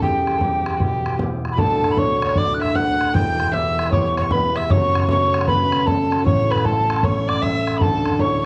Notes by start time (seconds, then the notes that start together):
Already playing: B3 A4
0.02 E2 G4 G5, bodhran
0.27 bodhran
0.34 A4, bodhran
0.40 B3 E4 G4, bodhran
0.66 bodhran
0.77 B2 F#4 G4, bodhran
1.06 bodhran
1.18 B3 E4 G4, bodhran
1.45 bodhran
1.52 B5
1.57 D1 D2 A4 A5, bodhran
1.84 bodhran
1.91 B5
1.96 A3 D4 F#4 C#5 C#6, bodhran
2.22 C#5, bodhran
2.29 bodhran
2.35 A3 D4 F#4 D5 D6, bodhran
2.54 F#6
2.61 E5 E6, bodhran
2.75 F#5 F#6, bodhran
3.01 bodhran
3.14 E1 E2 G5 G6, bodhran
3.40 bodhran
3.52 B3 E4 G4 E5 E6, bodhran
3.79 bodhran
3.86 bodhran
3.91 B3 E4 G4 C#5 C#6, bodhran
4.04 C#6
4.17 C#5 C#6, bodhran
4.31 B4 B5, bodhran
4.56 E5 E6, bodhran
4.69 F#1 F#2 C#5 C#6, bodhran
4.95 bodhran
5.08 A3 C#4 F#4 C#5 C#6, bodhran
5.34 bodhran
5.41 bodhran
5.46 A3 C#4 F#4 B4 B5, bodhran
5.72 bodhran
5.86 A4 A5, bodhran
6.12 bodhran
6.24 A1 A2 C#5 C#6, bodhran
6.50 B4 B5, bodhran
6.58 bodhran
6.63 A3 C#4 E4 A4 A5, bodhran
6.90 bodhran
6.96 bodhran
7.02 A3 C#4 E4 C#5 C#6, bodhran
7.28 D5 D6, bodhran
7.42 E5 E6, bodhran
7.67 bodhran
7.77 D1 D2 A4 B5
7.81 A5, bodhran
8.06 bodhran
8.19 A3 D4 E4 C#5 C#6, bodhran